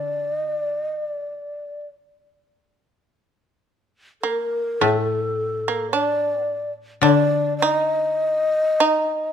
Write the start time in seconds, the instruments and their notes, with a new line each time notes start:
Already playing: koto D3, shamisen D4, shakuhachi D5
0.36 shakuhachi D#5
0.54 shakuhachi D5
0.83 shakuhachi D#5
1.01 shakuhachi D5
4.22 shamisen A#3, shakuhachi A#4
4.81 koto A2, shamisen A3, shakuhachi A4
5.68 shamisen A#3
5.91 shamisen D4, shakuhachi C#5
6.02 shakuhachi D5
6.47 shamisen A#3
7.02 koto D3, shamisen D4, shakuhachi D5
7.58 shakuhachi D5
7.62 shamisen D#4
7.69 shakuhachi D#5
8.80 shamisen D#4